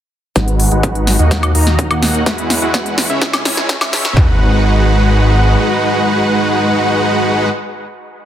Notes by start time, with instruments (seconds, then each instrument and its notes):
0.36 detuned saw bass G#1, supersaw synth G#3 D#4 F#4 B4 F#5, kick, snare, closed hi-hat
0.48 closed hi-hat
0.60 open hi-hat
0.71 detuned saw bass G#1, supersaw synth G#3 D#4 F#4 B4 F#5, closed hi-hat
0.83 kick, closed hi-hat
0.95 closed hi-hat
1.07 snare, open hi-hat
1.19 detuned saw bass D#2, supersaw synth A#3 D#4 F#4 D#5 F#5, closed hi-hat
1.31 kick, snare, closed hi-hat
1.43 closed hi-hat, high woodblock
1.55 detuned saw bass D#2, supersaw synth A#3 D#4 F#4 D#5 A#5, open hi-hat
1.67 snare, closed hi-hat
1.79 kick, closed hi-hat
1.90 detuned saw bass D#2, supersaw synth A#3 D#4 F#4 D#5 F#5, closed hi-hat, high woodblock
2.03 snare, open hi-hat
2.14 closed hi-hat
2.26 detuned saw bass E2, supersaw synth G#3 E4 F#4 B4 F#5, kick, snare, closed hi-hat
2.38 closed hi-hat
2.50 snare, open hi-hat
2.62 detuned saw bass E2, supersaw synth G#3 E4 F#4 B4 F#5, closed hi-hat
2.74 kick, snare, closed hi-hat
2.86 closed hi-hat
2.98 snare, open hi-hat
3.10 detuned saw bass C#2, supersaw synth G#3 C#4 E4 C#5 E5, closed hi-hat
3.22 kick, snare, closed hi-hat
3.33 snare, closed hi-hat, high woodblock
3.45 detuned saw bass C#2, supersaw synth G#3 C#4 E4 C#5 G#5, snare, open hi-hat
3.57 snare
3.69 kick, snare, closed hi-hat
3.81 detuned saw bass C#2, supersaw synth G#3 C#4 E4 C#5 E5, snare, closed hi-hat, high woodblock
3.93 snare, open hi-hat
4.05 snare
4.17 detuned saw bass G#1, supersaw synth G#3 D#4 F#4 B4 F#5, kick, clap, floor tom